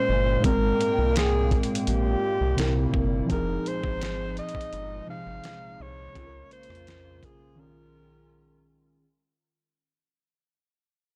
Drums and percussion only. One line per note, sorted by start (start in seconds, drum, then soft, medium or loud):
0.44 kick loud
0.44 closed hi-hat medium
0.81 closed hi-hat medium
1.16 snare loud
1.16 closed hi-hat medium
1.51 kick loud
1.51 closed hi-hat soft
1.63 closed hi-hat medium
1.75 closed hi-hat medium
1.87 closed hi-hat medium
2.58 snare loud
2.58 closed hi-hat medium
2.94 kick medium
3.30 kick loud
3.30 closed hi-hat medium
3.66 closed hi-hat medium
3.84 kick loud
4.01 snare loud
4.01 closed hi-hat medium
4.37 closed hi-hat soft
4.49 closed hi-hat medium
4.55 kick medium
4.61 closed hi-hat medium
4.73 closed hi-hat medium
5.44 snare loud
5.44 closed hi-hat medium
6.15 kick loud
6.15 closed hi-hat medium
6.51 closed hi-hat soft
6.63 closed hi-hat medium
6.70 cross-stick medium
6.75 closed hi-hat soft
6.87 snare loud
6.87 closed hi-hat medium
7.23 kick medium
7.23 closed hi-hat medium